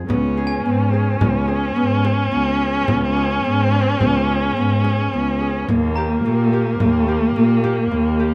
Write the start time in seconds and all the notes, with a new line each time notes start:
Already playing: C4 G#4
0.09 C#2 B3 C#4, frame drum
0.37 G#4
0.47 G#5
0.65 G#2 B3, frame drum
0.93 G#4
1.20 C#2 B3, frame drum
1.48 G#4, frame drum
1.76 G#2 B3
2.04 G#4, frame drum
2.32 C#2 B3
2.60 G#4
2.88 C#2 B3, frame drum
3.17 G#4
3.44 G#2 B3, frame drum
3.73 G#4
4.00 C#2 B3, frame drum
4.29 G#4, frame drum
4.57 G#2 B3
4.84 G#4, frame drum
5.13 C#2 B3
5.41 G#4
5.69 D#2 A#3, frame drum
5.96 G4 A#5
6.24 A#2 A#3, frame drum
6.53 G4
6.80 D#2 A#3, frame drum
7.08 G4, frame drum
7.36 A#2 A#3
7.64 G4, frame drum
7.91 D#2 A#3
8.20 G4